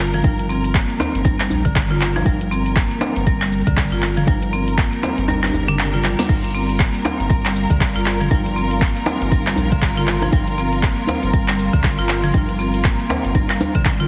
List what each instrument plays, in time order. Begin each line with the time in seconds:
Already playing: analog synth bass G1, string section D4 A#4
0.14 marimba F3, closed hi-hat, mid tom, shaker
0.24 analog synth bass G1, marimba G3, kick, djembe tone, shaker
0.39 closed hi-hat, shaker
0.49 marimba C4, shaker
0.64 closed hi-hat, shaker
0.75 marimba A#3, kick, clap, shaker
0.90 closed hi-hat, shaker
1.00 marimba C4, djembe slap, djembe tone, shaker
1.15 analog synth bass G1, closed hi-hat, shaker
1.25 marimba G3, kick, djembe tone, shaker
1.40 marimba G3, clap, closed hi-hat, shaker
1.50 analog synth bass A#1, djembe tone, shaker
1.65 analog synth bass G1, marimba D3, kick, closed hi-hat, mid tom, shaker
1.75 kick, clap, shaker
1.91 marimba F4, closed hi-hat, mid tom, shaker
2.01 clap, shaker
2.16 marimba F3, closed hi-hat, djembe slap, shaker
2.25 analog synth bass G1, marimba G3, string section G3 A#4, kick, djembe tone, shaker
2.41 closed hi-hat, shaker
2.51 marimba C4, shaker
2.66 closed hi-hat, shaker
2.76 marimba A#3, kick, clap, shaker
2.91 closed hi-hat, shaker
3.01 marimba C4, djembe slap, djembe tone, shaker
3.16 analog synth bass G1, closed hi-hat, shaker
3.27 marimba G3, kick, shaker
3.41 marimba G3, clap, closed hi-hat, shaker
3.52 shaker
3.67 analog synth bass D2, marimba D3, kick, closed hi-hat, mid tom, shaker
3.77 analog synth bass G1, kick, clap, shaker
3.92 analog synth bass G1, marimba F4, closed hi-hat, shaker
4.02 clap, shaker
4.17 marimba F3, closed hi-hat, mid tom, shaker
4.27 analog synth bass G1, marimba G3, kick, djembe tone, shaker
4.42 closed hi-hat, shaker
4.53 marimba C4, shaker
4.68 closed hi-hat, shaker
4.78 marimba A#3, kick, clap, shaker
4.93 closed hi-hat, shaker
5.03 marimba C4, djembe slap, djembe tone, shaker
5.18 analog synth bass G1, closed hi-hat, shaker
5.28 marimba G3, swell, djembe slap, djembe tone, shaker
5.43 marimba G3, clap, closed hi-hat, djembe tone, shaker
5.54 analog synth bass G1, djembe tone, shaker
5.68 marimba D4, closed hi-hat, mid tom, shaker
5.79 clap, shaker
5.94 marimba F4, closed hi-hat, mid tom, shaker
6.04 marimba G3, clap, high tom, shaker
6.19 marimba D4, snare, closed hi-hat, djembe slap, shaker
6.29 analog synth bass G1, marimba G3, string section F4, kick, crash, djembe tone, shaker
6.44 closed hi-hat, shaker
6.55 marimba C4, shaker
6.69 closed hi-hat, shaker
6.79 marimba A#3, kick, clap, shaker
6.95 closed hi-hat, shaker
7.05 marimba C4, djembe slap, djembe tone, shaker
7.20 analog synth bass G1, closed hi-hat, shaker
7.30 marimba G3, kick, shaker
7.45 marimba G3, clap, closed hi-hat, shaker
7.56 shaker
7.70 analog synth bass D2, marimba D3, kick, closed hi-hat, mid tom, shaker
7.81 analog synth bass G1, kick, clap, shaker
7.96 analog synth bass G1, marimba F4, closed hi-hat, shaker
8.06 clap, shaker
8.21 marimba F3, closed hi-hat, mid tom, shaker
8.31 analog synth bass G1, marimba G3, kick, djembe tone, shaker
8.46 closed hi-hat, shaker
8.56 marimba C4, shaker
8.71 closed hi-hat, shaker
8.81 marimba A#3, kick, clap, shaker
8.97 closed hi-hat, shaker
9.06 marimba C4, djembe slap, djembe tone, shaker
9.21 analog synth bass G1, closed hi-hat, shaker
9.31 marimba G3, kick, djembe tone, shaker
9.47 marimba G3, clap, closed hi-hat, shaker
9.56 analog synth bass A#1, djembe tone, shaker
9.72 analog synth bass G1, marimba D3, kick, closed hi-hat, mid tom, shaker
9.82 kick, clap, shaker
9.97 marimba F4, closed hi-hat, mid tom, shaker
10.07 clap, shaker
10.22 marimba F3, closed hi-hat, djembe slap, shaker
10.32 analog synth bass G1, marimba G3, kick, djembe tone, shaker
10.47 closed hi-hat, shaker
10.58 marimba C4, shaker
10.73 closed hi-hat, shaker
10.83 marimba A#3, kick, clap, shaker
10.98 closed hi-hat, shaker
11.07 marimba C4, djembe slap, djembe tone, shaker
11.23 analog synth bass G1, closed hi-hat, shaker
11.33 marimba G3, kick, shaker
11.48 marimba G3, clap, closed hi-hat, shaker
11.59 shaker
11.73 analog synth bass D2, marimba D3, kick, closed hi-hat, mid tom, shaker
11.83 analog synth bass G1, kick, clap, shaker
11.98 analog synth bass G1, marimba F4, closed hi-hat, shaker
12.09 clap, shaker
12.23 marimba F3, closed hi-hat, mid tom, shaker
12.34 analog synth bass G1, marimba G3, kick, djembe tone, shaker
12.49 closed hi-hat, shaker
12.59 marimba C4, shaker
12.74 closed hi-hat, shaker
12.84 marimba A#3, kick, clap, shaker
12.99 closed hi-hat, shaker
13.10 marimba C4, djembe slap, djembe tone, shaker
13.25 analog synth bass G1, closed hi-hat, shaker
13.35 marimba G3, kick, djembe tone, shaker
13.50 marimba G3, clap, closed hi-hat, shaker
13.60 djembe tone, shaker
13.75 marimba D3, kick, closed hi-hat, mid tom, shaker
13.85 kick, clap, shaker
14.00 marimba F4, closed hi-hat, mid tom, shaker